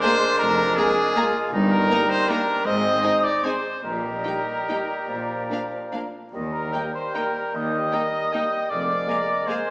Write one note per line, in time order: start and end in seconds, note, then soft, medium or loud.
0.00 1.48 G#3 medium
0.00 0.16 G#3 medium
0.00 0.15 A#3 medium
0.00 0.12 A#3 medium
0.00 1.18 D4 loud
0.00 0.11 G#4 medium
0.00 1.49 A#4 medium
0.00 0.38 C5 loud
0.00 0.12 A#5 medium
0.00 0.40 C6 loud
0.38 0.70 F1 medium
0.38 0.70 F2 medium
0.38 0.77 A#4 loud
0.38 0.75 A#5 loud
0.76 0.91 G#3 medium
0.76 0.85 A#3 medium
0.76 0.91 A#3 medium
0.76 1.52 G#4 loud
0.76 0.86 G#4 medium
0.76 1.51 G#5 medium
0.76 0.86 A#5 medium
1.16 1.29 G#3 medium
1.16 1.24 A#3 medium
1.16 1.29 A#3 medium
1.16 1.53 F4 medium
1.16 1.24 G#4 medium
1.16 1.24 A#5 medium
1.52 1.83 G1 loud
1.52 1.84 G2 medium
1.52 2.64 G3 medium
1.52 2.27 D#4 loud
1.52 2.68 A#4 medium
1.70 2.11 A#4 loud
1.70 2.11 A#5 medium
1.90 2.04 G3 medium
1.90 1.98 A#3 medium
1.90 2.04 A#3 medium
1.90 1.99 D#4 medium
1.90 2.00 A#5 medium
2.09 2.31 C5 loud
2.09 2.29 C6 medium
2.28 2.43 G3 medium
2.28 2.36 A#3 medium
2.28 2.43 A#3 medium
2.28 2.67 D4 medium
2.28 2.38 D#4 medium
2.28 2.67 A#4 loud
2.28 2.65 A#5 medium
2.28 2.39 A#5 medium
2.65 2.96 G#1 medium
2.65 2.96 G#2 medium
2.65 3.54 G#3 medium
2.65 3.03 C4 medium
2.65 3.56 C5 medium
2.65 3.25 D#5 loud
2.65 3.25 D#6 loud
3.02 3.17 G#3 medium
3.02 3.18 C4 medium
3.02 3.12 C4 medium
3.02 3.55 D#4 medium
3.02 3.12 D#4 medium
3.02 3.11 G#5 medium
3.23 3.46 D5 medium
3.23 3.45 D6 medium
3.43 3.58 G#3 medium
3.43 3.51 C4 medium
3.43 3.59 C4 medium
3.43 3.53 D#4 medium
3.43 3.84 C5 medium
3.43 3.52 G#5 medium
3.43 3.84 C6 medium
3.83 4.17 A#1 medium
3.83 4.18 A#2 medium
3.83 4.43 A#2 medium
3.83 5.11 G3 medium
3.83 6.09 G4 medium
3.83 6.10 A#4 medium
3.83 5.10 D#5 medium
3.83 6.10 A#5 medium
4.24 4.41 G3 soft
4.24 4.33 A#3 soft
4.24 4.32 D#4 soft
4.24 4.41 D#4 soft
4.24 4.33 G5 soft
4.69 4.84 G3 soft
4.69 4.77 A#3 soft
4.69 4.83 D#4 soft
4.69 4.77 D#4 soft
4.69 4.77 G5 soft
5.09 5.43 A#1 medium
5.09 5.43 A#2 medium
5.09 6.14 F3 medium
5.09 6.14 D5 medium
5.50 5.66 F3 soft
5.50 5.58 A#3 soft
5.50 5.58 D4 soft
5.50 5.66 D4 soft
5.50 5.60 F5 soft
5.92 6.08 F3 soft
5.92 6.01 A#3 soft
5.92 6.00 D4 soft
5.92 6.08 D4 soft
5.92 6.01 F5 soft
6.33 6.66 D#2 medium
6.33 6.67 D#2 medium
6.33 8.66 G3 medium
6.33 8.66 A#4 medium
6.33 6.74 D#5 medium
6.53 6.91 A#4 medium
6.53 6.96 A#5 medium
6.72 6.89 G3 medium
6.72 6.82 A#3 soft
6.72 6.89 A#3 medium
6.72 6.81 D#4 soft
6.72 7.95 G5 medium
6.72 6.82 G5 soft
6.94 7.16 C5 medium
6.94 7.18 C6 medium
7.14 7.30 G3 soft
7.14 7.30 A#3 soft
7.14 7.24 A#3 medium
7.14 7.22 D#4 soft
7.14 7.54 A#4 medium
7.14 7.23 G5 soft
7.14 7.58 A#5 medium
7.55 7.87 D#2 medium
7.55 8.71 D#5 medium
7.55 8.70 D#6 medium
7.93 8.07 G3 soft
7.93 8.01 A#3 soft
7.93 8.08 A#3 soft
7.93 8.01 D#4 soft
7.93 8.01 G5 soft
7.93 8.34 A#5 medium
8.33 8.47 G3 soft
8.33 8.41 A#3 soft
8.33 8.47 A#3 soft
8.33 8.41 D#4 medium
8.33 8.70 G5 medium
8.33 8.42 G5 soft
8.70 9.02 F1 medium
8.70 9.01 F2 medium
8.70 9.70 G#3 medium
8.70 9.70 A#4 medium
8.70 9.48 D5 medium
8.70 9.10 F5 medium
8.70 9.49 D6 medium
9.07 9.21 G#3 soft
9.07 9.21 A#3 soft
9.07 9.16 A#3 soft
9.07 9.16 G#4 soft
9.07 9.18 F5 soft
9.07 9.51 A#5 medium
9.47 9.61 G#3 soft
9.47 9.55 A#3 soft
9.47 9.61 A#3 medium
9.47 9.55 G#4 soft
9.47 9.70 C5 medium
9.47 9.57 F5 soft
9.47 9.70 G#5 medium
9.47 9.70 C6 medium